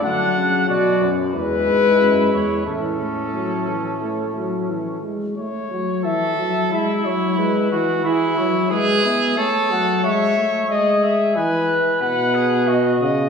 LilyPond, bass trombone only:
\new Staff \with { instrumentName = "Bass trombone" } { \clef bass \time 4/4 \key a \major \tempo 4 = 90 d8 cis8 b,8 fis,8 e,8 gis,8 fis,8 e,8 | a,2.~ a,8 r8 | r1 | r1 |
r1 | }